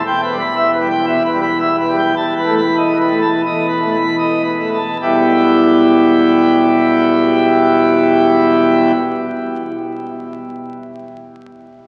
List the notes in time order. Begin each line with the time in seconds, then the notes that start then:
0.06 E1 E2 G5
0.23 B4
0.31 G3
0.39 B5
0.56 E5
0.73 B4
0.81 G3
0.90 G5
1.06 B2 E5
1.25 B4
1.33 G3
1.41 B5
1.59 E5
1.79 B4
1.88 G3
1.98 G5
2.16 E1 E2 A5
2.36 B4
2.47 A3
2.57 B5
2.77 D#5
2.98 B4
3.10 A3
3.21 A5
3.45 E1 E2 D#5
3.68 B4
3.80 A3
3.93 B5
4.18 D#5
4.44 B4
4.59 A3
4.74 A5
5.02 E1 E2 B2 G3 B3 E4 G4